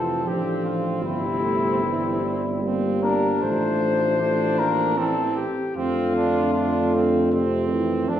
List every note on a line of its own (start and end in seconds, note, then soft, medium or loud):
0.00 0.21 F1 soft
0.00 0.27 E3 soft
0.00 0.24 F3 soft
0.00 2.59 C4 soft
0.00 0.29 A4 medium
0.25 1.04 A1 soft
0.25 1.03 D3 soft
0.25 1.03 F3 soft
0.25 0.65 G4 medium
0.66 1.03 F4 soft
1.02 3.42 G1 soft
1.02 1.85 C3 soft
1.02 1.43 G3 soft
1.02 2.60 E4 medium
1.42 1.83 A3 soft
1.82 2.26 E3 soft
1.82 2.64 G3 soft
2.24 3.42 G3 soft
2.62 3.40 A#3 soft
2.62 3.05 C4 soft
3.03 4.21 D4 soft
3.03 3.40 A#4 medium
3.41 5.45 A1 medium
3.41 4.19 F3 soft
3.41 4.18 A3 soft
3.41 4.60 C5 medium
4.19 5.00 F3 medium
4.19 4.60 A3 medium
4.19 5.00 D4 soft
4.59 4.98 A#3 medium
4.59 4.99 A#4 medium
4.97 5.50 E3 soft
4.97 5.49 C4 soft
4.97 5.49 C4 medium
4.97 5.35 A4 medium
5.36 5.75 G4 medium
5.76 8.06 F2 medium
5.76 7.35 D3 medium
5.76 8.05 A3 medium
5.76 6.13 C4 medium
5.76 7.29 F4 medium
6.16 6.53 D4 medium
6.53 6.96 D4 medium
6.95 7.32 C4 soft
7.32 7.73 C3 medium
7.32 8.10 C4 medium
7.71 8.11 E3 medium
8.09 8.20 F2 medium
8.09 8.20 F3 medium
8.09 8.20 A3 medium
8.09 8.20 D4 medium
8.09 8.20 A4 medium